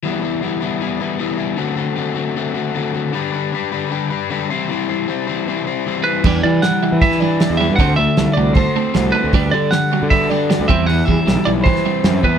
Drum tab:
CC |----------------|----------------|----------------|----------------|
HH |----------------|----------------|----------------|----------------|
SD |----------------|----------------|----------------|----------------|
BD |----------------|----------------|----------------|----------------|

CC |x---------------|----------------|----------------|----------------|
HH |----o---o---o---|o---o---o---o---|o---o---o---o---|o---o---o---o---|
SD |----o----o--o---|----o-------o---|----o-------o---|----o----o--o---|
BD |o-------o-------|o-------o-------|o-------o-----o-|--o-----o-----o-|